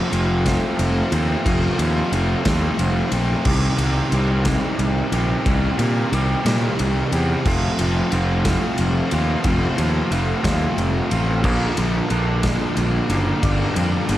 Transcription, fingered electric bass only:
0.12 0.56 F1 medium
0.79 1.01 F1 medium
1.12 1.34 D#2 medium
1.46 1.68 F1 loud
1.79 2.01 D#2 medium
2.12 2.34 F1 medium
2.46 2.67 D#2 loud
2.79 3.01 F1 medium
3.12 3.34 A#1 loud
3.45 3.67 C2 loud
3.78 4.00 C2 medium
4.12 4.56 C2 medium
4.79 5.01 C2 medium
5.12 5.34 A#1 loud
5.46 5.68 C2 medium
5.79 6.01 A#2 medium
6.12 6.34 C2 medium
6.45 6.67 A#2 loud
6.80 7.01 C2 medium
7.12 7.34 E2 medium
7.45 7.67 F1 medium
7.79 8.01 F1 medium
8.12 8.56 F1 loud
8.79 9.00 F1 medium
9.12 9.34 D#2 loud
9.45 9.66 F1 loud
9.78 10.00 D#2 medium
10.11 10.33 F1 medium
10.44 10.66 D#2 loud
10.77 10.99 F1 medium
11.12 11.44 A1 loud
11.44 11.66 A#1 loud
11.78 11.99 A#1 medium
12.11 12.54 A#1 medium
12.77 12.98 A#1 medium
13.09 13.31 F#1 loud
13.43 13.65 G1 medium
13.76 13.98 F2 medium
14.09 14.18 G1 loud

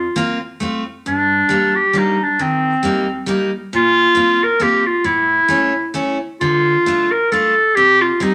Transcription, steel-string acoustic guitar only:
0.16 0.38 A#3 medium
0.16 0.38 C4 medium
0.16 0.39 F4 medium
0.60 0.82 A3 medium
0.60 0.83 C4 soft
0.60 0.83 F4 soft
1.06 1.40 G2 medium
1.49 1.72 G3 medium
1.49 1.72 A#3 soft
1.49 1.73 D4 medium
1.93 2.16 G3 soft
1.93 2.16 A#3 soft
1.93 2.17 D4 medium
2.39 2.73 D#3 medium
2.83 3.05 G3 medium
2.83 3.06 A#3 soft
2.83 3.06 D#4 medium
3.26 3.49 G3 medium
3.26 3.50 A#3 medium
3.26 3.50 D#4 medium
3.73 4.07 A#2 medium
4.15 4.38 A#3 medium
4.15 4.38 C4 medium
4.15 4.39 F4 medium
4.60 4.82 A#3 soft
4.60 4.83 C4 medium
4.60 4.83 F4 medium
5.04 5.39 A2 medium
5.48 5.72 A3 medium
5.48 5.72 C#4 medium
5.48 5.72 E4 soft
5.94 6.17 A3 medium
5.94 6.17 C#4 medium
5.94 6.17 E4 medium
6.41 6.75 D3 medium
6.86 7.08 A3 medium
6.86 7.08 D4 soft
6.86 7.09 F4 medium
7.32 7.53 A3 soft
7.32 7.53 D4 soft
7.32 7.54 F4 medium
7.77 8.10 C3 medium
8.20 8.35 G3 medium
8.20 8.35 C4 medium
8.20 8.35 D#4 medium

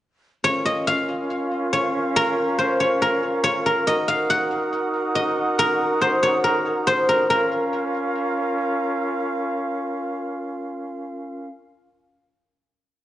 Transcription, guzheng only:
0.44 1.72 C#5 loud
0.66 2.44 D#5 medium
0.87 2.54 F5 medium
1.73 2.64 C#5 medium
2.16 3.01 A#4 loud
2.58 2.86 C5 medium
2.80 3.43 C#5 medium
3.02 3.65 A#4 medium
3.43 5.35 C#5 medium
3.66 5.58 A#4 medium
3.87 5.15 D#5 medium
4.08 4.36 F5 medium
4.30 5.90 F#5 medium
5.15 6.94 D#5 medium
5.59 6.43 A#4 loud
6.01 6.29 C5 medium
6.23 6.93 C#5 medium
6.44 7.08 A#4 medium
6.87 8.85 C5 medium
7.09 7.29 A#4 medium
7.30 9.42 A#4 medium

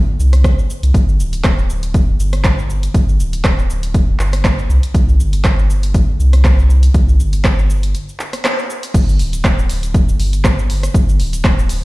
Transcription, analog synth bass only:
0.00 0.14 G1 medium
0.19 0.44 C2 medium
0.44 0.54 C2 medium
0.83 0.91 C2 medium
0.94 1.21 G1 loud
1.19 2.14 D1 loud
2.19 2.89 G1 medium
2.94 3.21 G1 medium
3.19 4.14 D1 loud
4.19 4.64 G1 medium
4.69 4.79 C2 loud
4.94 5.21 C2 loud
5.19 6.14 G1 loud
6.20 6.89 C2 medium
6.94 7.21 C2 loud
7.19 7.94 G1 medium
8.94 9.21 G1 loud
9.19 10.14 D1 loud
10.20 10.89 G1 medium
10.94 11.21 G1 loud
11.19 11.84 D1 loud

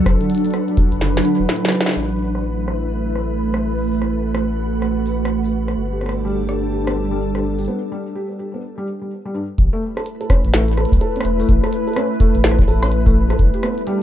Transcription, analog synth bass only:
0.06 0.17 F#1 loud
0.92 1.21 F#1 loud
1.40 1.46 E1 medium
1.97 5.76 A1 medium
5.77 7.68 G1 medium
9.58 9.69 A1 medium
10.45 10.86 A1 loud
10.92 10.99 B1 medium
11.25 11.44 E1 loud
11.49 11.60 A1 loud
12.35 12.64 A1 loud
12.68 13.35 A1 medium
13.39 13.50 G1 loud

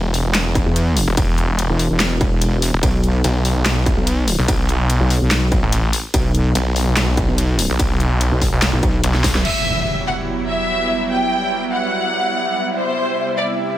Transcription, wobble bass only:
0.66 1.06 E2 loud
1.70 1.89 E1 loud
1.90 2.71 E1 loud
2.83 3.23 B1 medium
3.97 4.37 B1 loud
5.01 5.20 B1 loud
5.21 5.61 B1 loud
6.14 6.54 B1 medium
7.28 7.68 B1 loud
8.32 8.51 B1 loud
8.73 8.81 B1 loud
8.83 9.02 B1 loud
9.35 9.43 B1 medium

